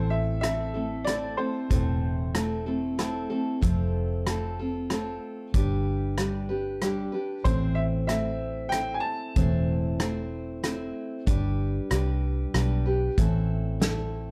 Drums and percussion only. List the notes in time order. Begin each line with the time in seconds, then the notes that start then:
0.43 cross-stick, closed hi-hat
1.07 cross-stick, closed hi-hat
1.71 kick, closed hi-hat
2.35 cross-stick, closed hi-hat
2.99 cross-stick, closed hi-hat
3.63 kick, closed hi-hat
4.27 cross-stick, closed hi-hat
4.90 cross-stick, closed hi-hat
5.54 kick, closed hi-hat
6.18 cross-stick, closed hi-hat
6.82 cross-stick, closed hi-hat
7.45 kick, closed hi-hat
8.09 cross-stick, closed hi-hat
8.72 cross-stick, closed hi-hat
9.36 kick, closed hi-hat
10.00 cross-stick, closed hi-hat
10.64 cross-stick, closed hi-hat
11.27 kick, closed hi-hat
11.91 cross-stick, closed hi-hat
12.54 cross-stick, closed hi-hat
13.18 kick, closed hi-hat
13.82 snare, closed hi-hat